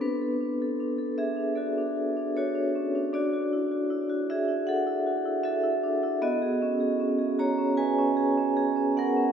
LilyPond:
\new Staff \with { instrumentName = "Vibraphone" } { \time 4/4 \key d \lydian \tempo 4 = 77 << { <d' b'>4. <gis' e''>8 <fis' d''>4 <fis' cis''>4 | <fis' d''>4. <gis' e''>8 <a' fis''>4 <a' e''>4 | \key b \lydian <fis' dis''>4. <cis'' ais''>8 <b' gis''>4. <ais' fis''>8 | } \\ { b16 a'16 d'16 a'16 d'16 a'8 d'16 a'16 d'16 a'16 d'16 a'16 d'16 cis'16 d'16 | d'16 fis'16 e'16 fis'16 e'16 fis'16 e'16 e'16 fis'16 e'16 fis'16 e'16 fis'16 e'16 d'16 e'16 | b16 gis'16 cis'16 gis'16 cis'16 gis'16 fis'16 cis'16 gis'16 cis'16 gis'16 cis'16 gis'16 cis'16 b16 cis'16 | } >> }